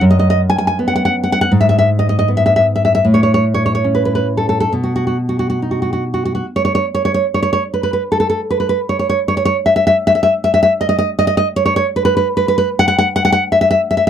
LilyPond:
\new Staff \with { instrumentName = "Nylon-string guitar" } { \time 2/4 \key b \mixolydian \tempo 4 = 78 << { r32 dis''32 dis''32 dis''32 r32 gis''32 gis''32 gis''32 r32 fis''32 fis''32 fis''32 r32 fis''32 fis''32 fis''32 | r32 e''32 e''32 e''32 r32 dis''32 dis''32 dis''32 r32 e''32 e''32 e''32 r32 e''32 e''32 e''32 | r32 cis''32 cis''32 cis''32 r32 cis''32 cis''32 cis''32 r32 b'32 b'32 b'32 r32 a'32 a'32 a'32 | r32 fis'32 fis'32 fis'32 r32 fis'32 fis'32 fis'32 r32 fis'32 fis'32 fis'32 r32 fis'32 fis'32 fis'32 |
r32 cis''32 cis''32 cis''32 r32 cis''32 cis''32 cis''32 r32 cis''32 cis''32 cis''32 r32 b'32 b'32 b'32 | r32 a'32 a'32 a'32 r32 b'32 b'32 b'32 r32 cis''32 cis''32 cis''32 r32 cis''32 cis''32 cis''32 | r32 e''32 e''32 e''32 r32 e''32 e''32 e''32 r32 e''32 e''32 e''32 r32 dis''32 dis''32 dis''32 | r32 dis''32 dis''32 dis''32 r32 cis''32 cis''32 cis''32 r32 b'32 b'32 b'32 r32 b'32 b'32 b'32 |
r32 fis''32 fis''32 fis''32 r32 fis''32 fis''32 fis''32 r32 e''32 e''32 e''32 r32 e''32 e''32 r32 | } \\ { fis,4 b4 | gis,4 b4 | a,4 cis'4 | b,4 dis'4 |
r2 | r2 | r2 | r2 |
r2 | } >> }